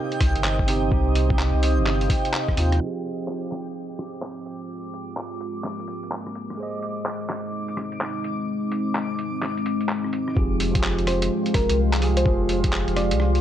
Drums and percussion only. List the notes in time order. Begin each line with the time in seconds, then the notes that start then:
0.12 closed hi-hat
0.21 kick, cross-stick, open hi-hat
0.36 closed hi-hat
0.44 clap
0.59 kick
0.68 open hi-hat
0.92 kick
1.15 open hi-hat
1.30 kick
1.39 clap
1.63 open hi-hat
1.86 cross-stick, clap
2.01 open hi-hat
2.10 kick, open hi-hat
2.25 closed hi-hat
2.34 clap
2.48 kick, cross-stick
2.57 open hi-hat
2.72 cross-stick, closed hi-hat
3.04 closed hi-hat
3.28 clap
3.52 cross-stick, clap, closed hi-hat
3.90 closed hi-hat
3.99 cross-stick, closed hi-hat
4.14 closed hi-hat
4.22 clap
4.46 closed hi-hat
4.94 closed hi-hat
5.17 clap
5.41 closed hi-hat
5.64 cross-stick, clap
5.79 closed hi-hat
5.88 closed hi-hat
6.03 closed hi-hat
6.12 clap
6.27 cross-stick
6.35 closed hi-hat
6.50 cross-stick
6.82 closed hi-hat
7.06 clap
7.30 cross-stick, clap, closed hi-hat
7.68 closed hi-hat
7.77 cross-stick, closed hi-hat
7.92 closed hi-hat
8.01 clap
8.24 closed hi-hat
8.72 closed hi-hat
8.95 clap
9.19 closed hi-hat
9.42 cross-stick, clap
9.57 closed hi-hat
9.66 closed hi-hat
9.81 closed hi-hat
9.89 clap
10.04 cross-stick
10.13 closed hi-hat
10.28 cross-stick
10.37 kick
10.60 open hi-hat
10.75 kick, closed hi-hat
10.83 clap
10.99 closed hi-hat
11.07 cross-stick, open hi-hat
11.22 closed hi-hat
11.46 closed hi-hat
11.54 kick, cross-stick, open hi-hat
11.69 closed hi-hat
11.93 clap, closed hi-hat
12.02 open hi-hat
12.17 closed hi-hat
12.26 kick
12.49 open hi-hat
12.64 kick, closed hi-hat
12.73 clap
12.88 closed hi-hat
12.96 cross-stick, open hi-hat
13.11 closed hi-hat
13.20 cross-stick
13.35 open hi-hat